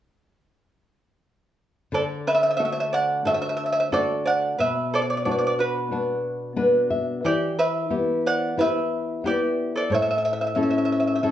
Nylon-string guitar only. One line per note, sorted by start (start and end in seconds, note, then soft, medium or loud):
1.92 4.54 D3 medium
2.59 3.24 A3 soft
2.59 3.24 D4 soft
2.59 3.24 F#4 soft
3.25 3.90 A3 soft
3.25 3.90 D4 soft
3.25 3.91 F#4 soft
3.92 4.57 A3 soft
3.92 4.57 D4 soft
3.92 4.57 F#4 soft
4.59 7.21 B2 medium
5.25 5.90 B3 soft
5.25 5.90 D4 soft
5.25 5.90 F#4 soft
5.91 6.55 B3 soft
5.91 6.56 D4 soft
5.91 6.55 F#4 soft
6.56 7.22 B3 soft
6.56 7.22 D4 soft
6.56 7.22 F#4 soft
6.56 6.88 B4 medium
6.90 7.22 E5 medium
7.24 9.87 E3 medium
7.90 8.55 B3 soft
7.90 8.55 E4 soft
7.90 8.56 G4 medium
8.57 9.22 B3 soft
8.57 9.22 E4 soft
8.57 9.22 G4 soft
9.24 9.89 B3 soft
9.24 9.89 E4 soft
9.24 9.89 G4 soft
9.90 11.31 A2 medium
10.56 11.21 C#4 soft
10.56 11.21 E4 soft
10.56 11.22 A4 soft
11.23 11.31 C#4 soft
11.23 11.31 E4 soft
11.23 11.31 A4 soft